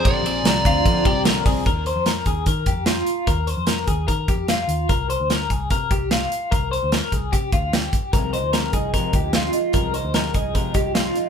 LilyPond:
<<
  \new Staff \with { instrumentName = "Glockenspiel" } { \time 4/4 \key ees \major \tempo 4 = 148 c'''4 bes''2~ bes''8 r8 | r1 | r1 | r1 |
r1 | r1 | r1 | }
  \new Staff \with { instrumentName = "Lead electric guitar" } { \time 4/4 \key ees \major d''2. r4 | r1 | r1 | r1 |
r1 | r1 | r1 | }
  \new Staff \with { instrumentName = "Clean electric guitar" } { \time 4/4 \key ees \major g'8 aes'8 g'8 f'4 g'8 bes'8 aes'8 | bes'8 c''8 bes'8 aes'8 bes'8 g'8 f'4 | bes'8 c''8 bes'8 aes'8 bes'8 g'8 f'4 | bes'8 c''8 bes'8 aes'8 bes'8 g'8 f'4 |
bes'8 c''8 bes'8 aes'8 g'8 f'8 g'4 | bes'8 c''8 bes'8 aes'8 bes'8 g'8 f'4 | bes'8 c''8 bes'8 aes'8 bes'8 g'8 f'4 | }
  \new Staff \with { instrumentName = "Twelve-string acoustic guitar" } { \clef bass \time 4/4 \key ees \major <bes, d f c' d'>8 <f c' d'>8 <d f c' d'>8 <f c' d'>8 <bes, d f c' d'>8 <f c' d'>8 <d f c' d'>8 <f c' d'>8 | r1 | r1 | r1 |
r1 | <c f aes ees'>8 <f aes ees'>8 <c f aes ees'>8 <f aes ees'>8 <c f aes ees'>8 <f aes ees'>8 <c f aes ees'>8 <f aes ees'>8 | <c f aes ees'>8 <f aes ees'>8 <c f aes ees'>8 <f aes ees'>8 <c f aes ees'>8 <f aes ees'>8 <c f aes ees'>8 <f aes ees'>8 | }
  \new Staff \with { instrumentName = "Picked electric bass" } { \clef bass \time 4/4 \key ees \major bes,,8 bes,,8 c,8 d,8 bes,,8 c,4 c,8 | ees,8. f,8. ees,8 ees8 f,4 r8 | ees,8. f,8. ees,8 ees8 f,4 ees,8 | c,8. d,8. c,8 c8 c,4 r8 |
c,8. d,8 r16 c,8 c8 d,4 r8 | c,8. d,8. c,8 c8 d,4 r8 | c,8. d,8. c,8 c8 c,4 r8 | }
  \new DrumStaff \with { instrumentName = "Drums" } \drummode { \time 4/4 <bd cymr>8 cymr8 <cymr sn>8 <bd cymr>8 <bd cymr>8 <bd cymr>8 <cymr sn>8 <hho bd cymr>8 | <hh bd>8 hh8 <hh sn>8 <hh bd>8 <hh bd>8 <hh bd>8 <hh sn>8 hh8 | <hh bd>8 hh8 <hh sn>8 <hh bd>8 <hh bd>8 <hh bd>8 <hh sn>8 hh8 | <hh bd>8 hh8 <hh sn>8 <hh bd>8 <hh bd>8 <hh bd>8 <hh sn>8 hh8 |
<hh bd>8 hh8 <hh sn>8 <hh bd>8 <hh bd>8 <hh bd>8 <hh sn>8 <hh bd>8 | <hh bd>8 hh8 <hh sn>8 <hh bd>8 <hh bd>8 <hh bd>8 <hh sn>8 hh8 | <hh bd>8 hh8 <hh sn>8 <hh bd>8 <hh bd>8 <hh bd>8 <hh sn>8 hh8 | }
>>